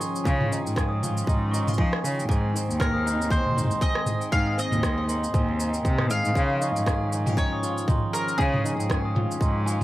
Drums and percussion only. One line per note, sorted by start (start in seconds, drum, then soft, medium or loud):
0.01 shaker medium
0.16 shaker soft
0.25 kick loud
0.25 shaker soft
0.41 mid tom medium
0.53 shaker medium
0.67 shaker soft
0.76 kick loud
0.76 cross-stick medium
0.76 shaker soft
1.03 mid tom medium
1.03 shaker medium
1.17 shaker soft
1.27 kick loud
1.27 shaker soft
1.54 shaker medium
1.67 mid tom medium
1.67 shaker soft
1.74 shaker soft
1.78 kick loud
1.93 cross-stick medium
2.05 shaker medium
2.20 shaker soft
2.29 kick loud
2.29 shaker soft
2.56 shaker medium
2.71 shaker soft
2.80 kick loud
2.80 cross-stick medium
2.80 mid tom medium
2.80 shaker soft
3.07 shaker medium
3.22 shaker soft
3.30 kick loud
3.30 shaker soft
3.46 mid tom soft
3.48 mid tom soft
3.51 mid tom soft
3.54 mid tom medium
3.57 mid tom medium
3.57 shaker medium
3.60 mid tom medium
3.64 mid tom medium
3.67 mid tom medium
3.71 shaker soft
3.81 kick loud
3.81 shaker soft
3.95 cross-stick medium
4.06 mid tom medium
4.06 shaker medium
4.21 shaker soft
4.32 kick loud
4.32 shaker soft
4.59 shaker medium
4.72 mid tom medium
4.72 shaker soft
4.83 kick loud
4.83 cross-stick medium
4.83 shaker soft
5.09 shaker medium
5.24 shaker soft
5.34 kick loud
5.34 mid tom medium
5.34 shaker soft
5.60 shaker medium
5.74 shaker soft
5.85 kick loud
5.85 shaker soft
5.98 cross-stick medium
5.98 mid tom medium
6.10 shaker medium
6.25 shaker soft
6.35 kick loud
6.35 shaker soft
6.62 shaker medium
6.76 shaker soft
6.86 kick loud
6.86 cross-stick medium
6.86 shaker soft
7.13 shaker medium
7.26 mid tom medium
7.26 shaker soft
7.37 kick loud
7.37 shaker soft
7.63 shaker medium
7.78 shaker soft
7.88 kick loud
7.88 mid tom medium
7.88 shaker soft
8.15 shaker medium
8.28 shaker soft
8.39 kick loud
8.39 shaker soft
8.54 mid tom medium
8.66 shaker medium
8.80 shaker soft
8.90 kick loud
8.90 cross-stick medium
8.90 shaker soft
9.16 mid tom medium
9.31 shaker soft
9.41 kick loud
9.41 shaker soft
9.68 shaker medium